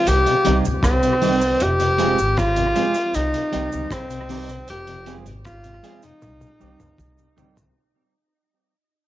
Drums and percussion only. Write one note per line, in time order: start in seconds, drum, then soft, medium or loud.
0.07 closed hi-hat medium
0.07 cabasa medium
0.26 closed hi-hat soft
0.26 cabasa soft
0.45 closed hi-hat medium
0.45 cabasa soft
0.65 cabasa medium
0.83 kick loud
0.83 cross-stick loud
0.83 closed hi-hat medium
0.83 cabasa medium
1.03 closed hi-hat soft
1.03 cabasa medium
1.22 open hi-hat medium
1.22 cabasa medium
1.41 cabasa medium
1.60 closed hi-hat medium
1.60 cabasa medium
1.80 closed hi-hat medium
1.80 cabasa medium
1.98 closed hi-hat medium
1.98 cabasa medium
2.18 cabasa medium
2.37 kick loud
2.37 cross-stick medium
2.37 closed hi-hat medium
2.37 cabasa medium
2.56 closed hi-hat medium
2.56 cabasa medium
2.76 closed hi-hat medium
2.76 cabasa soft
2.94 closed hi-hat soft
2.94 cabasa medium
3.14 closed hi-hat medium
3.14 cabasa medium
3.34 closed hi-hat soft
3.34 cabasa medium
3.53 closed hi-hat medium
3.53 cabasa soft
3.72 cabasa medium
3.91 kick loud
3.91 cross-stick loud
3.91 closed hi-hat medium
3.91 cabasa medium
4.10 closed hi-hat soft
4.10 cabasa medium
4.29 open hi-hat medium
4.29 cabasa medium
4.49 closed hi-hat soft
4.49 cabasa medium
4.68 closed hi-hat medium
4.68 cabasa medium
4.87 closed hi-hat medium
4.87 cabasa medium
5.06 closed hi-hat medium
5.06 cabasa medium
5.26 closed hi-hat soft
5.26 cabasa medium
5.45 kick loud
5.45 cross-stick loud
5.45 closed hi-hat medium
5.45 cabasa medium
5.64 closed hi-hat medium
5.64 cabasa medium
5.84 closed hi-hat medium
5.84 cabasa soft
6.02 closed hi-hat soft
6.02 cabasa medium
6.22 high tom medium
6.22 cabasa medium
6.41 high tom soft
6.41 cabasa medium
6.61 cabasa soft
6.80 mid tom medium
6.80 cabasa medium
6.98 kick medium
6.98 mid tom medium
6.98 cabasa medium
7.18 cabasa medium
7.38 floor tom medium
7.38 cabasa medium
7.57 floor tom medium
7.57 cabasa medium